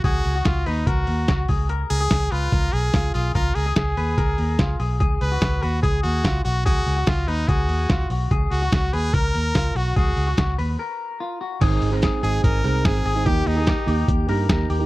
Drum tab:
CC |--------|--------|--------|--------|
HH |xoxoxoxo|xoxoxoxo|xoxoxoxo|xoxoxoxo|
SD |--o---o-|--o---o-|--o---o-|--o---o-|
BD |o-o-o-oo|--o-o-o-|o-o-o-o-|o-o-o-o-|

CC |--------|--------|--------|x-------|
HH |xoxoxoxo|xoxoxoxo|xoxo----|xoxoxoxo|
SD |--o---o-|--o---o-|--o-----|--o---o-|
BD |o-o-o-o-|o-o-o-o-|o-o-----|o-o-o-o-|

CC |--------|
HH |xoxoxoxo|
SD |--o---o-|
BD |o-o-o-o-|